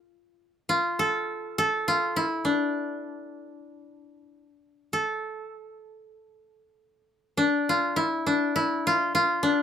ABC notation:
X:1
M:2/4
L:1/16
Q:1/4=50
K:none
V:1 name="Koto"
z2 F A2 A F E | D6 z2 | A8 | D F E D E F F D |]